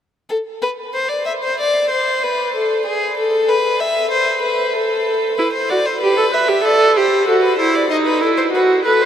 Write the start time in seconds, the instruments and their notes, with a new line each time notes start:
0.30 violin A4
0.62 violin B4
0.94 violin C5
1.09 violin D5
1.26 violin E5
1.44 violin C5
1.60 violin D5
1.90 violin C5
2.23 violin B4
2.55 violin A4
2.86 violin G#4
3.18 violin A4
3.49 violin B4
3.80 violin E5
4.11 violin C5
4.42 violin B4
4.74 violin A4
5.38 viola E4, violin B4
5.53 violin C5
5.70 viola F#4, violin D5
5.86 violin C5
6.02 viola G4, violin B4
6.18 viola A4
6.33 viola B4, violin E5
6.48 viola G4
6.64 viola A4, violin D5
6.97 viola G4, violin C5
7.27 viola F#4, violin A4
7.42 violin B4
7.59 viola E4, violin C5
7.75 violin D5
7.90 viola D#4, violin D#5
8.07 violin B4
8.21 viola E4, violin A4
8.37 violin C5
8.53 viola F#4, violin B4
8.85 violin A4, viola B4
9.02 violin C5